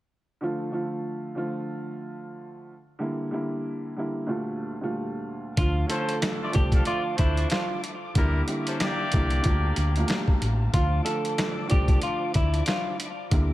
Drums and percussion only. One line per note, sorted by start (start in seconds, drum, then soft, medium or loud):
5.57 kick loud
5.57 closed hi-hat loud
5.90 closed hi-hat medium
6.09 closed hi-hat medium
6.22 snare loud
6.22 closed hi-hat medium
6.53 kick loud
6.53 closed hi-hat medium
6.72 kick loud
6.72 closed hi-hat medium
6.85 closed hi-hat medium
7.18 kick loud
7.18 closed hi-hat medium
7.37 closed hi-hat medium
7.50 snare loud
7.50 snare medium
7.50 closed hi-hat medium
7.84 closed hi-hat medium
8.15 kick loud
8.15 closed hi-hat loud
8.48 closed hi-hat medium
8.67 closed hi-hat medium
8.80 snare loud
8.80 closed hi-hat medium
9.12 kick loud
9.12 closed hi-hat medium
9.30 closed hi-hat medium
9.44 kick loud
9.44 closed hi-hat medium
9.76 closed hi-hat medium
9.96 closed hi-hat medium
10.08 snare loud
10.08 snare medium
10.08 closed hi-hat medium
10.28 kick medium
10.42 closed hi-hat medium
10.74 kick loud
10.74 closed hi-hat loud
11.06 closed hi-hat medium
11.25 closed hi-hat medium
11.38 snare loud
11.38 closed hi-hat medium
11.70 kick loud
11.70 closed hi-hat medium
11.88 kick loud
11.88 closed hi-hat medium
12.02 closed hi-hat medium
12.34 kick medium
12.34 closed hi-hat medium
12.54 closed hi-hat medium
12.66 snare loud
12.66 snare medium
12.66 closed hi-hat medium
13.00 closed hi-hat medium
13.31 kick loud
13.31 closed hi-hat loud